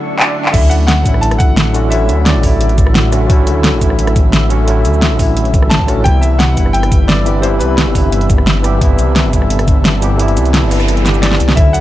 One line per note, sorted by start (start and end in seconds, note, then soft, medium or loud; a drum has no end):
0.00 0.50 D3 medium
0.00 0.51 D3 medium
0.00 0.52 F#3 medium
0.00 0.54 A3 medium
0.00 0.55 C#4 medium
0.00 0.56 E4 medium
0.00 0.50 F#4 medium
0.00 0.50 E5 medium
0.00 0.50 C#6 medium
0.00 swell medium
0.18 0.54 D5 medium
0.18 clap loud
0.45 clap medium
0.51 1.04 D2 loud
0.51 1.02 D3 medium
0.51 1.03 F#3 medium
0.51 1.03 A3 medium
0.51 6.02 E4 medium
0.51 6.02 F#4 medium
0.51 0.71 E5 loud
0.51 11.53 E5 medium
0.51 kick loud
0.51 closed hi-hat loud
0.51 crash loud
0.55 1.04 C#4 medium
0.55 1.05 E4 loud
0.70 0.75 F#5 loud
0.70 closed hi-hat medium
0.70 shaker medium
0.87 1.20 F#5 loud
0.87 snare loud
0.87 closed hi-hat medium
1.03 2.11 A1 loud
1.03 1.54 D3 medium
1.03 1.55 F#3 medium
1.03 1.55 A3 medium
1.03 kick medium
1.03 closed hi-hat medium
1.03 shaker medium
1.07 1.56 C#4 medium
1.07 1.57 E4 medium
1.14 cross-stick soft
1.21 1.26 A5 loud
1.21 closed hi-hat medium
1.31 cross-stick medium
1.31 closed hi-hat soft
1.38 1.87 F#5 loud
1.38 kick loud
1.38 closed hi-hat medium
1.38 shaker medium
1.57 snare loud
1.57 closed hi-hat loud
1.73 1.88 D3 loud
1.73 1.89 F#3 medium
1.73 1.90 A3 medium
1.73 1.90 C#4 medium
1.73 1.90 F#4 loud
1.73 closed hi-hat medium
1.73 shaker medium
1.89 2.39 D3 loud
1.89 2.41 F#3 medium
1.89 2.41 A3 medium
1.89 2.23 E5 loud
1.89 closed hi-hat medium
1.93 2.42 C#4 medium
1.93 2.43 E4 loud
2.09 2.36 D2 medium
2.09 closed hi-hat medium
2.09 shaker medium
2.25 3.08 D5 medium
2.25 snare loud
2.25 closed hi-hat medium
2.35 2.43 A1 medium
2.41 3.48 A1 loud
2.41 2.92 D3 medium
2.41 2.92 F#3 medium
2.41 2.93 A3 medium
2.41 kick medium
2.41 open hi-hat medium
2.41 shaker medium
2.45 2.94 C#3 medium
2.45 2.94 E4 medium
2.61 closed hi-hat loud
2.69 closed hi-hat soft
2.78 kick loud
2.78 closed hi-hat medium
2.78 shaker medium
2.87 cross-stick medium
2.95 snare loud
2.95 closed hi-hat loud
3.11 3.25 D3 loud
3.11 3.27 F#3 medium
3.11 3.28 A3 medium
3.11 3.28 C#4 medium
3.11 3.28 F#4 loud
3.11 cross-stick soft
3.11 closed hi-hat medium
3.11 shaker medium
3.27 3.77 D3 medium
3.27 3.79 F#3 medium
3.27 3.79 A3 medium
3.27 kick loud
3.27 closed hi-hat medium
3.31 3.80 C#4 medium
3.31 3.81 E4 loud
3.47 3.74 D2 medium
3.47 closed hi-hat medium
3.47 shaker medium
3.64 snare loud
3.64 closed hi-hat medium
3.73 3.81 A1 medium
3.78 4.86 A1 loud
3.78 4.30 D3 medium
3.78 4.30 F#3 medium
3.78 4.31 A3 medium
3.78 kick medium
3.78 closed hi-hat medium
3.78 shaker medium
3.83 4.32 C#4 medium
3.83 4.32 E4 medium
3.90 cross-stick soft
3.99 closed hi-hat loud
4.07 cross-stick medium
4.07 closed hi-hat soft
4.16 kick loud
4.16 closed hi-hat medium
4.16 shaker medium
4.33 snare loud
4.33 closed hi-hat medium
4.49 4.64 D3 medium
4.49 4.65 F#3 medium
4.49 4.65 A3 medium
4.49 4.66 C#4 medium
4.49 4.66 F#4 loud
4.49 closed hi-hat medium
4.49 shaker medium
4.65 5.15 D3 medium
4.65 5.17 F#3 medium
4.65 5.17 A3 medium
4.65 closed hi-hat medium
4.69 5.18 C#4 medium
4.69 5.19 E4 loud
4.85 5.12 D2 medium
4.85 closed hi-hat medium
4.85 shaker medium
4.94 shaker soft
5.02 snare loud
5.02 closed hi-hat medium
5.11 5.18 A1 medium
5.16 5.88 A1 loud
5.16 5.67 D3 medium
5.16 5.68 F#3 medium
5.16 5.69 A3 medium
5.16 kick medium
5.16 open hi-hat medium
5.16 shaker medium
5.21 5.70 C#4 medium
5.21 5.70 E4 medium
5.37 closed hi-hat medium
5.45 closed hi-hat soft
5.54 kick loud
5.54 closed hi-hat medium
5.54 shaker medium
5.62 cross-stick soft
5.70 6.06 A5 loud
5.70 snare loud
5.70 closed hi-hat medium
5.80 kick medium
5.87 6.04 A1 medium
5.87 6.03 D3 medium
5.87 6.03 F#3 medium
5.87 6.03 A3 medium
5.87 6.04 C#4 medium
5.87 6.04 F#4 loud
5.87 cross-stick soft
5.87 closed hi-hat medium
5.87 shaker medium
6.02 6.56 C2 loud
6.02 6.53 C3 medium
6.02 6.54 E3 medium
6.02 6.55 G3 medium
6.02 8.79 B4 medium
6.02 6.23 G5 loud
6.02 kick loud
6.02 closed hi-hat medium
6.07 6.56 B3 medium
6.07 6.56 E4 loud
6.21 6.40 E5 loud
6.21 closed hi-hat medium
6.21 shaker medium
6.39 6.75 F#5 loud
6.39 snare loud
6.39 closed hi-hat medium
6.54 7.62 G1 loud
6.54 7.05 C3 medium
6.54 7.06 E3 medium
6.54 7.07 G3 medium
6.54 kick medium
6.54 closed hi-hat medium
6.54 shaker medium
6.59 7.08 B3 medium
6.59 7.08 E4 medium
6.66 cross-stick soft
6.73 7.06 G5 loud
6.73 closed hi-hat medium
6.83 cross-stick medium
6.83 closed hi-hat soft
6.92 kick loud
6.92 closed hi-hat medium
6.92 shaker medium
7.08 7.44 D5 medium
7.08 snare loud
7.08 closed hi-hat medium
7.25 7.39 C3 medium
7.25 7.41 E3 medium
7.25 7.41 G3 medium
7.25 7.42 B3 medium
7.25 7.42 G4 loud
7.25 closed hi-hat medium
7.25 shaker medium
7.41 7.91 C3 medium
7.41 7.92 E3 medium
7.41 7.93 G3 medium
7.41 7.47 C5 medium
7.41 closed hi-hat medium
7.45 7.94 B3 medium
7.45 7.95 E4 loud
7.59 7.88 C2 medium
7.59 8.25 B4 medium
7.59 closed hi-hat medium
7.59 shaker medium
7.78 snare loud
7.78 closed hi-hat medium
7.87 7.94 G1 medium
7.92 9.00 G1 loud
7.92 8.43 C3 medium
7.92 8.44 E3 medium
7.92 8.45 G3 medium
7.92 kick medium
7.92 open hi-hat medium
7.92 shaker medium
7.96 8.45 B3 medium
7.96 8.46 E4 medium
8.12 closed hi-hat medium
8.21 closed hi-hat soft
8.30 kick loud
8.30 closed hi-hat medium
8.30 shaker medium
8.38 cross-stick soft
8.47 snare loud
8.47 closed hi-hat medium
8.63 8.77 C3 medium
8.63 8.79 E3 medium
8.63 8.79 G3 medium
8.63 8.80 B3 medium
8.63 8.80 G4 loud
8.63 cross-stick soft
8.63 closed hi-hat medium
8.63 shaker medium
8.79 9.29 C3 loud
8.79 9.30 E3 medium
8.79 9.31 G3 medium
8.79 11.54 A4 medium
8.79 kick loud
8.79 closed hi-hat medium
8.83 9.32 B3 medium
8.83 9.32 E4 loud
8.99 9.26 C2 medium
8.99 closed hi-hat medium
8.99 shaker medium
9.16 snare loud
9.16 closed hi-hat medium
9.25 9.32 G1 medium
9.30 10.38 G1 loud
9.30 9.81 C3 medium
9.30 9.82 E3 medium
9.30 9.83 G3 medium
9.30 kick medium
9.30 closed hi-hat medium
9.30 shaker medium
9.35 9.84 B3 medium
9.35 9.84 E4 medium
9.42 cross-stick soft
9.50 closed hi-hat loud
9.59 cross-stick medium
9.59 closed hi-hat soft
9.68 kick loud
9.68 closed hi-hat medium
9.68 shaker medium
9.85 snare loud
9.85 closed hi-hat loud
10.01 10.15 C3 loud
10.01 10.17 E3 medium
10.01 10.17 G3 medium
10.01 10.18 B3 medium
10.01 10.18 G4 loud
10.01 closed hi-hat medium
10.01 shaker medium
10.16 10.67 C3 medium
10.16 10.68 E3 medium
10.16 10.69 G3 medium
10.16 closed hi-hat loud
10.16 noise sweep medium
10.21 10.70 B3 medium
10.21 10.70 E4 loud
10.28 closed hi-hat soft
10.37 10.64 C2 medium
10.37 closed hi-hat medium
10.37 shaker medium
10.45 closed hi-hat soft
10.45 shaker soft
10.54 snare loud
10.54 closed hi-hat medium
10.63 10.70 G1 medium
10.70 11.40 G1 loud
10.70 11.01 C3 medium
10.70 11.03 E3 medium
10.70 11.04 G3 medium
10.70 11.04 B3 medium
10.70 11.04 E4 medium
10.70 open hi-hat medium
10.70 shaker medium
10.80 cross-stick soft
10.80 shaker soft
10.88 closed hi-hat medium
10.97 closed hi-hat soft
11.03 11.54 C3 medium
11.03 11.54 E3 medium
11.03 11.55 G3 medium
11.03 snare medium
11.03 closed hi-hat medium
11.03 shaker medium
11.07 11.56 B3 medium
11.07 11.57 G4 medium
11.14 shaker soft
11.22 11.58 D5 medium
11.22 snare medium
11.22 closed hi-hat loud
11.31 snare medium
11.40 11.56 C2 medium
11.40 closed hi-hat medium
11.40 shaker medium
11.49 snare medium
11.54 11.81 D2 loud
11.54 11.81 D3 medium
11.54 11.81 F#3 medium
11.54 11.81 A3 medium
11.54 11.81 E4 medium
11.54 11.81 F#4 medium
11.54 11.74 E5 loud
11.54 11.81 E5 medium
11.54 kick loud
11.54 closed hi-hat medium
11.59 11.81 C#4 medium
11.59 11.81 E4 loud
11.73 11.81 F#5 loud
11.73 closed hi-hat medium
11.73 shaker medium